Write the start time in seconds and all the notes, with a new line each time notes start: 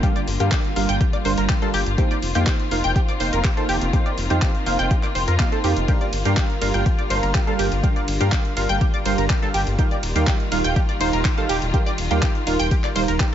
Already playing: D3 G3 A#3 F4
0.03 G3 D4 G4 A#4 F5 G5, kick, closed hi-hat
0.16 D5 D6, closed hi-hat
0.27 G1, open hi-hat
0.40 G2 G3 D4 G4 A#4 F5 G5, closed hi-hat
0.52 G4 G5, kick, clap, closed hi-hat
0.65 closed hi-hat
0.76 G1 G3 D4 F4 A#4 F5, open hi-hat
0.89 G1 G5 G6, closed hi-hat
1.01 G4 G5, kick, closed hi-hat
1.13 D5 D6, closed hi-hat
1.25 G1 G3 D4 A#4 C5 F5 C6, open hi-hat
1.38 G1 A#4 A#5, closed hi-hat
1.49 G4 G5, kick, clap, closed hi-hat
1.62 G3 D4 A4 A#4 F5 A5, closed hi-hat
1.74 G1 G4 G5, open hi-hat
1.86 G1, closed hi-hat
1.98 D#3 A#3 C4 D#4 G4 C5 F5 G5, kick, closed hi-hat
2.11 D5 D6, closed hi-hat
2.22 F1, open hi-hat
2.35 F2 A#3 D#4 G4 C5 F5 G5, closed hi-hat
2.47 G4 G5, kick, clap, closed hi-hat
2.60 closed hi-hat
2.71 F1 A#3 D#4 F4 C5 F5, open hi-hat
2.84 F1 G5 G6, closed hi-hat
2.96 G4 G5, kick, closed hi-hat
3.08 D5 D6, closed hi-hat
3.20 F1 A#3 D#4 C5 F5 C6, open hi-hat
3.33 F1 A#4 A#5, closed hi-hat
3.44 G4 G5, kick, clap, closed hi-hat
3.57 A#3 D#4 A4 C5 F5 A5, closed hi-hat
3.69 F1 G4 G5, open hi-hat
3.81 F1, closed hi-hat
3.93 A#3 D#4 G4 C5 F5 G5, kick, closed hi-hat
4.06 D5 D6, closed hi-hat
4.18 F1, open hi-hat
4.30 F2 A#3 D#4 G4 C5 F5 G5, closed hi-hat
4.42 G4 G5, kick, clap, closed hi-hat
4.55 closed hi-hat
4.66 F1 A#3 D#4 F4 C5 F5, open hi-hat
4.79 F1 G5 G6, closed hi-hat
4.91 G4 G5, kick, closed hi-hat
5.03 D5 D6, clap, closed hi-hat
5.15 F1 C5 C6, open hi-hat
5.28 F2 A#4 A#5, closed hi-hat
5.39 A#3 D#4 G4 C5 F5 G5, kick, clap, closed hi-hat
5.52 A4 A5, closed hi-hat
5.64 F2 A#3 D#4 G4 C5 F5 G5, open hi-hat
5.76 F1, closed hi-hat
5.88 D3 G3 D4 G4 A#4 F5 G5, kick, closed hi-hat, ride
6.01 D5 D6, closed hi-hat
6.13 G1, open hi-hat, ride
6.25 G2 G3 D4 G4 A#4 F5 G5, closed hi-hat
6.37 G4 G5, kick, clap, closed hi-hat, ride
6.50 closed hi-hat
6.61 G1 G3 D4 F4 A#4 F5, open hi-hat, ride
6.74 G1 G5 G6, closed hi-hat
6.86 G4, kick, closed hi-hat, ride
6.98 D5 D6, closed hi-hat
7.10 G1 G3 D4 A#4 C5 F5 C6, open hi-hat, ride
7.23 G1 A#4 A#5, closed hi-hat
7.34 G4 G5, kick, clap, closed hi-hat, ride
7.47 G3 D4 A4 A#4 F5 A5, closed hi-hat
7.59 G1 G4 G5, open hi-hat, ride
7.72 G1, closed hi-hat
7.83 G3 D4 G4 A#4 F5 G5, kick, closed hi-hat, ride
7.96 D5 D6, closed hi-hat
8.08 G1, open hi-hat, ride
8.20 G2 G3 D4 G4 A#4 F5 G5, closed hi-hat
8.32 G4 G5, kick, clap, closed hi-hat
8.45 closed hi-hat
8.57 G1 G3 D4 F4 A#4 F5, open hi-hat, ride
8.69 G1 G5 G6, closed hi-hat
8.81 G4 G5, kick, closed hi-hat, ride
8.94 D5 D6, closed hi-hat
9.05 G1 G3 D4 A#4 C5 F5 C6, open hi-hat, ride
9.18 G1 A#4 A#5, closed hi-hat
9.30 G4 G5, kick, clap, closed hi-hat, ride
9.42 G3 D4 A4 A#4 F5 A5, closed hi-hat
9.54 G1 G4 G5, open hi-hat, ride
9.67 G1, closed hi-hat
9.79 D#3 G3 D#4 F4 G4 A#4 F5 G5, kick, closed hi-hat, ride
9.91 D5 D6, closed hi-hat
10.03 D#1, open hi-hat, ride
10.15 D#2 G3 D#4 G4 A#4 F5 G5, closed hi-hat
10.27 G4 G5, kick, clap, closed hi-hat
10.40 closed hi-hat
10.52 D#1 G3 D#4 F4 A#4 F5, open hi-hat, ride
10.64 D#1 G5 G6, closed hi-hat
10.76 G4 G5, kick, closed hi-hat, ride
10.89 D5 D6, closed hi-hat
11.00 D#1 G3 D#4 A#4 C5 F5 C6, open hi-hat, ride
11.13 D#1 A#4 A#5, closed hi-hat
11.25 G4 G5, kick, clap, closed hi-hat, ride
11.37 G3 D#4 A4 A#4 F5 A5, closed hi-hat
11.49 D#1 G4 G5, open hi-hat, ride
11.62 D#1, closed hi-hat
11.74 G3 D#4 G4 A#4 F5 G5, kick, closed hi-hat, ride
11.86 D5 D6, closed hi-hat
11.98 D#1, open hi-hat, ride
12.11 D#2 G3 D#4 G4 A#4 F5 G5, closed hi-hat
12.22 G4 G5, kick, clap, closed hi-hat, ride
12.35 closed hi-hat
12.47 D#1 G3 D#4 F4 A#4 F5, open hi-hat, ride
12.59 D#1 G5 G6, closed hi-hat
12.71 G4 G5, kick, closed hi-hat, ride
12.84 D5 D6, clap, closed hi-hat
12.96 D#1 G3 D#4 A#4 C5 F5 C6, open hi-hat, ride
13.08 D#1 A#4 A#5, closed hi-hat
13.20 G4 G5, kick, clap, closed hi-hat, ride